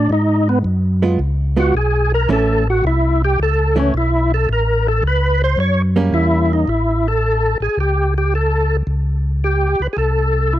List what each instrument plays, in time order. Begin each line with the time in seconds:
Already playing: tonewheel organ D4
0.10 tonewheel organ G#2 D#4
0.49 tonewheel organ B3
0.64 tonewheel organ F#2
1.02 hollow-body jazz guitar G#3 B3 F4
1.19 tonewheel organ C#2
1.57 hollow-body jazz guitar G#3 B3 F4, tonewheel organ F#4
1.74 tonewheel organ B1 G#4
2.14 tonewheel organ A#4
2.29 tonewheel organ A1 A4, hollow-body jazz guitar E3 A3 C#4
2.70 tonewheel organ F#4
2.84 tonewheel organ C2 E4
3.25 tonewheel organ G4
3.39 tonewheel organ C#2 A4
3.76 hollow-body jazz guitar E3 A3 C#4, tonewheel organ C#4
3.94 tonewheel organ B1 E4
4.34 tonewheel organ A4
4.49 tonewheel organ A1 A#4
4.88 tonewheel organ A4
5.03 tonewheel organ C#2
5.07 tonewheel organ B4
5.44 tonewheel organ C5
5.57 tonewheel organ F#2 C#5
5.96 hollow-body jazz guitar G3 A#3 C#4
6.13 tonewheel organ E2 E4
6.53 tonewheel organ D#4
6.68 tonewheel organ A1 E4
7.08 tonewheel organ A4
7.60 tonewheel organ A1 G#4
7.77 tonewheel organ C#2 G4
8.18 tonewheel organ G4
8.35 tonewheel organ A4
8.87 tonewheel organ C#2
9.44 tonewheel organ G4
9.80 tonewheel organ C#2 B4
9.93 tonewheel organ C2 G#4
9.98 tonewheel organ A4
10.53 tonewheel organ E4